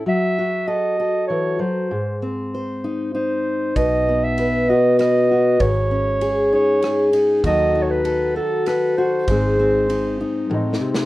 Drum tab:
RD |------------------|------------------|x-----x-----x-----|x-----x-----x--x--|
SD |------------------|------------------|------------r-----|------------r-----|
T1 |------------------|------------------|------------------|------------------|
BD |------------------|------------------|o-----------------|o-----------------|

RD |x-----x-----x-----|x-----x-----------|
SD |------------r-----|--------------o-o-|
T1 |------------------|------------o-----|
BD |o-----------------|o-----------------|